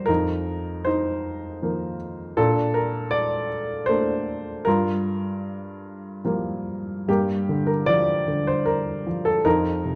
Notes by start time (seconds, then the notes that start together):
Already playing: F3 G3 A#3 A#4 C5 D5
0.06 F2 D#4 A#4
0.85 D#4 C5
1.62 D#3 F3 A#3
2.37 A#2 D4 A4
2.74 A#4
3.11 D5
3.86 A3 A#3 D4 C5
4.65 G2 F4 A#4
6.25 F3 G3 A#3
7.08 G2 A#3 G4
7.49 D3
7.67 A#4
7.86 F3 D5
8.28 D3
8.47 C5
8.66 A#4
9.07 F3
9.25 A4
9.45 F2 D#4 A#4
9.85 C3